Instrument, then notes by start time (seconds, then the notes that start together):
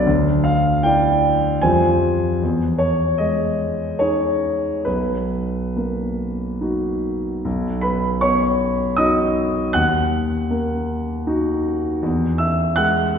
grand piano
0.06 D2
0.44 F5
0.83 E4 D5 G5
1.62 F2 F3 G3 F4 C5 G#5
2.42 E2
2.78 C#5
3.18 G#3 D#5
3.99 D#4 G#4 C#5
4.85 B1 B4
5.76 A#3
6.61 D#4 F#4
7.45 B1
7.81 B4 B5
8.21 B3 C#5 C#6
8.97 D#4 F#4 D#5 D#6
9.73 D#2 F#5 F#6
10.51 A#3
11.27 D#4 F#4
12.02 E2
12.38 E5 E6
12.76 G#3 F#5 F#6